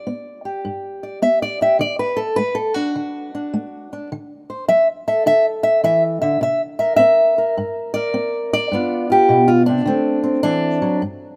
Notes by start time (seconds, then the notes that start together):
Already playing: D5
0.07 B3
0.45 G4
0.65 G2
1.03 D5
1.22 B3 E5
1.42 D5
1.61 G4 E5
1.79 D3 D5
1.99 B4
2.17 A4
2.36 A3 B4
2.55 A4
2.74 D4 F#4
2.95 D3
3.35 D4
3.54 A3
3.93 D4
4.12 D3
4.50 C5
4.68 F#3 E5
5.08 A4 E5
5.26 D3 E5
5.63 E5
5.84 E3 E5
6.22 D3 E5
6.41 C3 E5
6.79 A#4 E5
6.96 C4 E5
7.38 A#4
7.57 G2
7.94 A#4 D5
8.14 C4
8.53 D5
8.72 G2 B3 D4 F4
9.10 F4 G4
9.29 B2
9.48 F4
9.66 C3 D4
9.86 D3 A3 C4
10.24 C4
10.43 E3 D4
10.82 F#3
11.02 G2